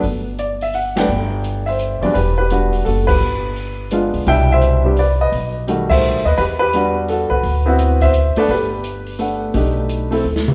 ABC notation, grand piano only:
X:1
M:3/4
L:1/8
Q:"Swing" 1/4=170
K:G
V:1 name="Grand piano"
z2 d e f [Bdg]- | [Bdg]3 [ce]2 [Bd] | [K:Em] [GB] [GB]2 z [FA] [GB]- | [GB]4- [GB] z |
[eg] [ce]2 z [Bd] [B^d]- | [B^d] z2 [ce]2 [Bd] | [GB] [GB]2 z [FA] [FB]- | [FB]3 [ce]2 [Bd] |
[GB]6- | [GB]4 z2 |]
V:2 name="Grand piano"
z4 z [F,A,B,D] | z4 z [E,,F,G,B,D] | [K:Em] z2 [G,B,DF]3 z | z4 [_A,B,D=F]2 |
[B,,G,DE]3 [G,B,DG] z2 | z2 [^D,G,A,F]3 z | z2 [G,B,DF]3 z | z [B,CEF]3 z [A,B,DA] |
z4 [A,B,Df]2 | [A,D^DG]3 [A,CEA] z2 |]